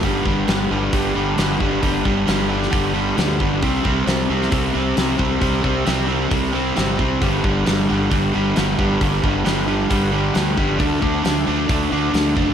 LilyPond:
<<
  \new Staff \with { instrumentName = "Overdriven electric guitar" } { \clef bass \time 4/4 \key c \dorian \tempo 4 = 134 <g, d g>8 <g, d g>8 <g, d g>8 <g, d g>8 <g, d g>8 <g, d g>8 <g, d g>8 <g, d g>8 | <g, d g>8 <g, d g>8 <g, d g>8 <g, d g>8 <g, d g>8 <g, d g>8 <g, d g>8 <g, d g>8 | <c g c'>8 <c g c'>8 <c g c'>8 <c g c'>8 <c g c'>8 <c g c'>8 <c g c'>8 <c g c'>8 | <c g c'>8 <c g c'>8 <c g c'>8 <c g c'>8 <c g c'>8 <c g c'>8 <c g c'>8 <c g c'>8 |
<g, d g>8 <g, d g>8 <g, d g>8 <g, d g>8 <g, d g>8 <g, d g>8 <g, d g>8 <g, d g>8 | <g, d g>8 <g, d g>8 <g, d g>8 <g, d g>8 <g, d g>8 <g, d g>8 <g, d g>8 <g, d g>8 | <d a d'>8 <d a d'>8 <d a d'>8 <d a d'>8 <d a d'>8 <d a d'>8 <d a d'>8 <d a d'>8 | }
  \new Staff \with { instrumentName = "Fingered electric bass" } { \clef bass \time 4/4 \key c \dorian g,,8 g,,8 g,,8 g,,8 g,,8 g,,8 g,,8 g,,8 | g,,8 g,,8 g,,4 g,,4 d,8 g,,8 | c,8 c,8 c,8 c,8 c,8 c,8 c,8 c,8 | c,8 c,8 c,4 c,4 g,,8 c,8 |
g,,8 g,,8 g,,8 g,,8 g,,8 g,,8 g,,8 g,,8 | g,,8 g,,8 g,,4 g,,4 d,8 g,,8 | d,8 d,8 d,8 d,8 d,8 d,8 d,8 fis,,8 | }
  \new DrumStaff \with { instrumentName = "Drums" } \drummode { \time 4/4 <hho bd>8 bd8 <hho sn>4 <hho bd>4 <hho sn>8 bd8 | <hho bd>8 bd8 <hho sn>8. sn16 <hho bd>4 <hho sn>8 bd8 | <hho bd>8 bd8 <hho sn>8. sn16 <hho bd>4 <hho sn>8 bd8 | <hho bd>8 bd8 <hho sn>4 <hho bd>4 <hho sn>8 bd8 |
<hho bd>8 bd8 <hho sn>4 <hho bd>4 <hho sn>8 bd8 | <hho bd>8 bd8 <hho sn>4 <hho bd>4 <hho sn>8 bd8 | <hho bd>8 bd8 <hho sn>4 <hho bd>4 <hho sn>8 bd8 | }
>>